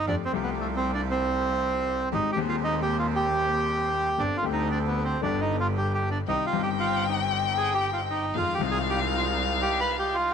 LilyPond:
<<
  \new Staff \with { instrumentName = "Violin" } { \time 4/4 \key f \dorian \tempo 4 = 116 r1 | r1 | r1 | g''1 |
f''1 | }
  \new Staff \with { instrumentName = "Bandoneon" } { \time 4/4 \key f \dorian \tuplet 3/2 { d'8 c'8 b8 a8 c'8 d'8 } c'2 | \tuplet 3/2 { ees'8 g'8 f'8 ees'8 g'8 f'8 } g'2 | \tuplet 3/2 { d'8 f'8 ees'8 d'8 b8 c'8 d'8 ees'8 f'8 g'8 g'8 d'8 } | \tuplet 3/2 { ees'8 f'8 g'8 } f'8 ees'8 \tuplet 3/2 { r8. aes'8 g'16~ g'16 f'8 ees'8. } |
\tuplet 3/2 { f'8 g'8 aes'8 } g'8 f'8 \tuplet 3/2 { r8. g'8 b'16~ b'16 g'8 f'8 r16 } | }
  \new Staff \with { instrumentName = "Bandoneon" } { \time 4/4 \key f \dorian <a f' g'>8 <a f' g'>2.~ <a f' g'>8 | <aes c' g'>8 <aes c' g'>2.~ <aes c' g'>8 | <c' d' g'>8 <c' d' g'>4. <b d' g'>2 | <c' ees' g'>8 <c' ees' g'>2.~ <c' ees' g'>8 |
<aes ees' f'>8 <aes ees' f'>2.~ <aes ees' f'>8 | }
  \new Staff \with { instrumentName = "Grand piano" } { \clef bass \time 4/4 \key f \dorian <f, f a c' g'>8 <c, c f a c' g'>2.~ <c, c f a c' g'>8 | <aes,, aes, ees aes c' g'>8 <ees,, ees, ees aes c' g'>2.~ <ees,, ees, ees aes c' g'>8 | <g,, g, d g c' g'>8 <d, d g c' g'>4. <g,, g, d g b g'>2 | <c, c ees g c' g'>8 <g,, g, ees g c' g'>2.~ <g,, g, ees g c' g'>8 |
<f, ees f aes c' f'>8 <c, c ees aes c' f'>2.~ <c, c ees aes c' f'>8 | }
  \new Staff \with { instrumentName = "Double bass" } { \clef bass \time 4/4 \key f \dorian f,8 c,2.~ c,8 | aes,,8 ees,2.~ ees,8 | g,,8 d,4. g,,2 | c,8 g,,2.~ g,,8 |
f,8 c,2.~ c,8 | }
>>